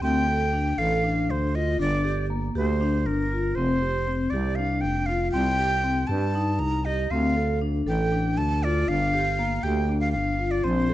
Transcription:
0.01 fm bass D2, vibraphone C4, flute G5
0.28 vibraphone A4
0.53 vibraphone D4
0.78 fm bass A1, vibraphone A4, flute F5
1.04 vibraphone D4
1.29 fm bass D2, flute C5
1.54 vibraphone F4, flute D#5
1.79 fm bass G1, vibraphone D4, flute D5
2.04 vibraphone G4
2.30 vibraphone A#3
2.55 fm bass D2, vibraphone G4, flute C5
2.81 vibraphone D4
3.05 fm bass G1, flute A#4
3.32 vibraphone F4
3.55 fm bass F1, vibraphone C4, flute C5
3.82 vibraphone G4
4.08 vibraphone C4
4.30 fm bass C2, vibraphone G4, flute D5
4.55 vibraphone D4, flute F5
4.81 fm bass F1, flute G5
5.06 vibraphone F4, flute F5
5.31 fm bass C2, vibraphone C4, flute G5
5.59 vibraphone G4
5.84 vibraphone C4
6.07 fm bass G2, vibraphone G4, flute A5
6.35 vibraphone D#4
6.59 fm bass C2, flute A#5
6.85 vibraphone G4, flute D#5
7.11 fm bass D2, vibraphone C4, flute F5
7.37 vibraphone A4
7.61 vibraphone D4
7.86 fm bass A1, vibraphone A4, flute G5
8.12 vibraphone D4
8.37 fm bass D2, flute A5
8.63 vibraphone F4, flute D5
8.88 fm bass G1, vibraphone D4, flute F5
9.14 vibraphone G4
9.39 vibraphone A#3
9.63 fm bass D2, vibraphone G4, flute G5
9.89 vibraphone D4
10.01 flute F5
10.12 fm bass G1, flute F5
10.39 vibraphone F4
10.51 flute D5
10.64 fm bass A#1, vibraphone C4, flute C5
10.89 vibraphone A4

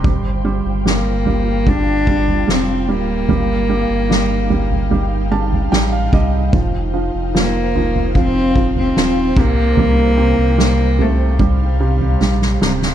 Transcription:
Already playing: ambient pad G5
0.04 sub bass G1, felt piano G3, ambient pad F4 F5, kick, floor tom
0.45 felt piano G3
0.65 sub bass G1
0.86 felt piano G3, cello A#3, snare
1.26 felt piano G3, floor tom
1.67 felt piano G3, cello D4, kick, floor tom
2.07 felt piano G3, kick
2.28 floor tom
2.48 sub bass F1, felt piano G3, cello C4, snare
2.88 sub bass D1, felt piano G3, cello A#3
3.28 sub bass G1, felt piano G3, ambient pad D#4, floor tom
3.69 felt piano G3
3.89 sub bass G1
4.10 felt piano G3, snare
4.50 felt piano G3, floor tom
4.71 floor tom
4.91 felt piano G3, floor tom
5.31 felt piano G3 A5
5.52 floor tom
5.72 sub bass A1, felt piano G3 G5, snare
5.92 felt piano F5
6.13 sub bass C2, felt piano G3 D#5, kick
6.53 sub bass F1, felt piano F3, ambient pad C5 F5, kick, floor tom
6.94 felt piano F3
7.14 sub bass F1
7.34 felt piano F3, cello A#3, snare
7.75 felt piano F3, floor tom
7.95 floor tom
8.15 felt piano F3, cello C4, kick, floor tom
8.56 felt piano F3, kick
8.76 cello C4, floor tom
8.96 sub bass D#1, felt piano F3, snare
9.36 sub bass C2, felt piano C3, cello A#3, ambient pad G5, kick, crash
9.77 sub bass C2, felt piano G3, floor tom
10.17 felt piano C3
10.38 sub bass C2
10.58 felt piano G3, snare
10.98 felt piano C3, cello A3, ambient pad F5, floor tom
11.39 felt piano G3, cello G3, kick, floor tom
11.80 felt piano C3
12.00 floor tom
12.20 sub bass A#1, felt piano G3, snare
12.42 snare
12.61 sub bass D1, felt piano C3, snare
12.82 snare

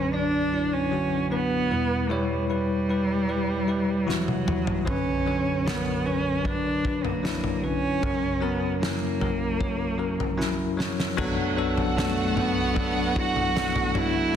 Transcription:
Already playing: tine electric piano B1 F#2 D3 F#3 D4 B4, cello C#4
0.12 tine electric piano F#3 D4 D5, cello D4
0.52 tine electric piano F#3 D4 E4
0.73 cello C#4
0.91 tine electric piano D3 F#3 F#4
1.30 tine electric piano F#3 D4 B4, cello B3
1.71 tine electric piano E2 B2 G3 E4 B4
2.09 tine electric piano G3 E4 C#5, cello G3
2.49 tine electric piano G3 E4 B4, cello G3
2.89 tine electric piano G3 E4 B4
3.28 tine electric piano G3 E4 B4
3.67 tine electric piano G3 E4 B4
4.07 tine electric piano E3 E4 F#4, cello F#3, snare
4.28 high tom
4.46 tine electric piano E3 E4 F#4, mid tom
4.67 floor tom
4.85 tine electric piano B1 F#2 D3 F#3 B4, cello C#4, kick, floor tom
5.26 tine electric piano D3 F#3 C#5
5.65 tine electric piano F#3 D4 A#4, cello B3, snare
6.04 tine electric piano D3 F#3 B4, cello C#4
6.44 tine electric piano F#3 D4 B4, cello D4, kick, floor tom
6.83 tine electric piano F#3 D4 B4, kick
7.05 cello A#3, floor tom
7.23 tine electric piano F#3 D4 E4, snare
7.44 floor tom
7.62 tine electric piano D3 F#3 B4, cello C#4
8.01 tine electric piano F#2 C#3 F#3 C#4 A#4, kick, floor tom
8.41 tine electric piano F#3 C#4 A#4, cello B3
8.80 tine electric piano F#3 C#4 E4, cello A#3, snare
9.19 tine electric piano F#3 C#4 A#4, floor tom
9.59 tine electric piano F#3 C#4 C#5, kick, floor tom
9.98 tine electric piano F#3 C#4 A#4
10.20 floor tom
10.37 tine electric piano F#3 C#4 E4, snare
10.77 tine electric piano F#3 C#4 C#5, snare
11.00 snare
11.17 tine electric piano B1 F#2 F#3 B3 D4 A4, clean electric guitar B2 F#3 A3 D4 F#4, violin section F#4 F#5, kick, floor tom, crash
11.57 tine electric piano F#3 B3 D4 A4, clean electric guitar D4 F#4
11.61 clean electric guitar A3
11.77 floor tom
11.96 clean electric guitar B2 F#3 A3 D4 F#4, tine electric piano F#3 B3 D4 A4, snare
12.01 cello A3
12.35 tine electric piano F#3 B3 D4 A4, clean electric guitar D4 F#4, floor tom
12.40 clean electric guitar A3, cello B3
12.74 tine electric piano F#3 B3 D4 A4, clean electric guitar F#3 A3, kick, floor tom
12.78 clean electric guitar D4 F#4
13.14 tine electric piano F#3 B3 D4 E4, kick
13.18 cello F#4
13.36 floor tom
13.54 clean electric guitar B2 F#3 A3 D4 F#4, tine electric piano F#3 B3 D4 A4, snare
13.76 floor tom
13.94 tine electric piano F#3 B3 D4 F#4, clean electric guitar A3 D4 F#4, cello E4, floor tom

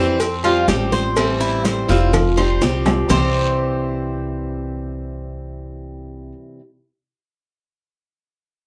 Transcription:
Already playing: upright bass F2, steel-string acoustic guitar E3 G3 C4 E4, cuban tres C4
0.20 muted steel-string acoustic guitar stroke, cowbell, high conga, low agogo, long guiro, maracas
0.44 steel-string acoustic guitar G3 C4 F4, cuban tres F4, high conga, low agogo
0.68 upright bass A1, steel-string acoustic guitar F3 G3 C4 F4, cuban tres G4, cowbell, high conga, low timbale, low agogo, short guiro, maracas
0.92 cuban tres C5, high conga, short guiro, maracas
1.16 steel-string acoustic guitar E3 G3 C4 E4, cowbell, high conga, low agogo, long guiro, maracas
1.40 cuban tres E4, high conga, maracas
1.65 cuban tres C5, cowbell, high conga, low timbale, low agogo, short guiro, maracas
1.88 upright bass F1, steel-string acoustic guitar G3 C4 E4, cuban tres F4, cowbell, high conga, short guiro, maracas
2.13 muted steel-string acoustic guitar stroke, cowbell, high conga, low conga, high timbale, low agogo, long guiro, maracas
2.37 steel-string acoustic guitar G3 C4 F4, cuban tres C5, high conga, high timbale, low agogo
2.61 upright bass C2, steel-string acoustic guitar F3 G3 C4 F4, cuban tres G4, cowbell, high bongo, high conga, low timbale, short guiro, maracas
2.85 low bongo, high conga, low timbale, low agogo, short guiro, maracas
3.09 upright bass C2, steel-string acoustic guitar C3 E3 G3 C4 E4, cuban tres C4 G4 C5, low bongo, low conga, low timbale, long guiro, maracas

